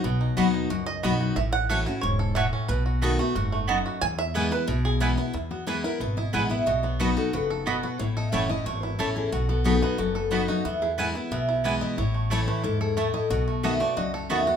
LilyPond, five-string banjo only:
\new Staff \with { instrumentName = "Five-string banjo" } { \time 4/4 \key e \major \tempo 4 = 181 << { r2 r8 dis''4. | e''8 fis''4. cis''4 e''4 | b'8 r2. r8 | gis''8 e''4 b'4 gis'4 r8 |
r1 | r1 | r1 | r1 |
r1 | r1 | r1 | } \\ { <b fis'>8 dis'8 b8 dis'8 fis'4 b8 fis'8 | r4 a'8 e'4 a'4 cis'8 | r8 fis'8 a'8 a8 fis'8 a8 dis'8 fis'8 | r4 b4 e'4 b8 e'8 |
e'8 b8 e'8 e'8 e'8 e'8 e'8 b8 | fis'8 b8 a'8 b8 fis'8 a'8 b8 fis'8 | e'8 a'8 a8 e'8 a8 e'8 a'8 e'8 | fis'8 b8 a'8 b8 fis'8 a'8 b8 fis'8 |
b8 e'8 e'8 e'8 b8 e'8 b8 e'8 | e'8 a8 a'8 a8 e'8 a'8 a8 e'8 | fis'8 a8 a'8 a8 fis'8 a'8 a8 fis'8 | } >> }